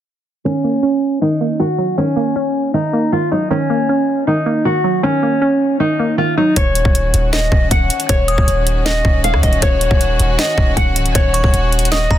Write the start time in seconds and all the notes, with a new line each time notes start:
0.45 D#3 C#4
0.64 A#3
0.83 C#4
1.21 D#3 D#4
1.41 A#3
1.60 D#3 F#4
1.78 F#3
1.98 D#3 C#4
2.16 A#3
2.36 C#4
2.74 D#3 D#4
2.93 A#3
3.12 D#3 F4
3.31 F#3 D#4
3.50 D#3 C#4
3.70 A#3
3.89 C#4
4.27 D#3 D#4
4.46 A#3
4.65 D#3 F#4
4.84 F#3
5.03 D#3 C#4
5.23 A#3
5.42 C#4
5.80 D#3 D#4
6.00 A#3
6.18 D#3 F4
6.37 F#3 D#4
6.56 D#1 D#3 C#4 F#4 C#5, kick, closed hi-hat
6.75 closed hi-hat
6.85 D#1, kick
6.95 closed hi-hat
7.14 D#1, closed hi-hat
7.33 D#5, snare, closed hi-hat
7.52 D#1, kick
7.71 D#1 F#5, kick, closed hi-hat
7.90 closed hi-hat
8.00 closed hi-hat
8.09 D#1 C#5, kick, closed hi-hat
8.28 D#6, closed hi-hat
8.38 D#1, kick
8.48 D#1, closed hi-hat
8.67 closed hi-hat
8.85 D#5, snare, closed hi-hat
9.05 D#1, kick
9.24 F5, closed hi-hat
9.34 D#2, cross-stick
9.43 D#1 D#5, kick, closed hi-hat
9.53 closed hi-hat
9.62 D#1 C#5, kick, closed hi-hat
9.81 closed hi-hat
9.91 D#1, kick
10.01 closed hi-hat
10.20 D#1, closed hi-hat
10.39 D#5, snare, closed hi-hat
10.58 D#1, kick
10.77 D#1 F#5, kick, closed hi-hat
10.96 C#1, closed hi-hat
11.06 D#1, closed hi-hat
11.15 D#1 C#5, kick, closed hi-hat
11.34 C#6, closed hi-hat
11.44 D#1, kick
11.53 D#1, closed hi-hat
11.72 closed hi-hat
11.79 closed hi-hat
11.85 closed hi-hat
11.92 D#5 D#6, snare, closed hi-hat
12.11 D#1 A#5, kick